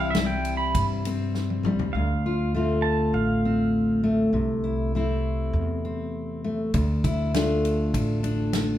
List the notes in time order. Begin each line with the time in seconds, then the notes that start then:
Already playing: C2 C3 E3 G3 C4 E4 F5
0.10 E5
0.15 G3 C4 E4, snare, ride
0.26 G5
0.45 ride
0.57 B5
0.75 G2, kick, ride
1.05 C4, ride
1.34 snare
1.50 high tom
1.63 C2 G3, mid tom
1.79 D2, floor tom
1.93 D2 F5
2.26 F4
2.54 A3 C4 F4
2.82 A5
3.13 A1 F5
3.45 C4
4.04 A3
4.33 C2 C3
4.64 E4
4.95 A3 C4 E4
5.53 E2
5.85 C4
6.44 A3
6.74 D2, kick, ride
7.04 E4, kick, ride
7.34 A3 D4 F4, snare, ride
7.65 ride
7.94 A1, kick, ride
8.23 D4, ride
8.53 snare, ride